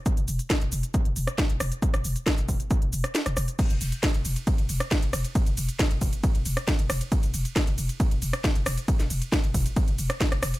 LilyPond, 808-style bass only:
\new Staff \with { instrumentName = "808-style bass" } { \clef bass \time 4/4 \key c \lydian \tempo 4 = 136 r16 e,,16 e,,16 r8 e,,16 e,,16 r8 e,,16 e,,16 r8 e,,16 e,,16 r16 | r16 e,,16 e,,16 r8 e,,16 e,,16 r8 e,,16 e,,16 r8 e,,16 e,,16 r16 | r16 e,,16 e,,16 r8 e,,16 e,,16 r8 e,,16 e,,16 r8 e,,16 e,,16 r16 | r16 e,,16 e,,16 r8 e,,16 e,,16 r8 e,,16 e,,16 r8 e,,16 e,,16 r16 |
r16 e,,16 e,,16 r8 e,,16 e,,16 r8 e,,16 e,,16 r8 e,,16 e,,16 r16 | r16 e,,16 e,,16 r8 e,,16 e,,16 r8 e,,16 e,,16 r8 e,,16 e,,16 r16 | }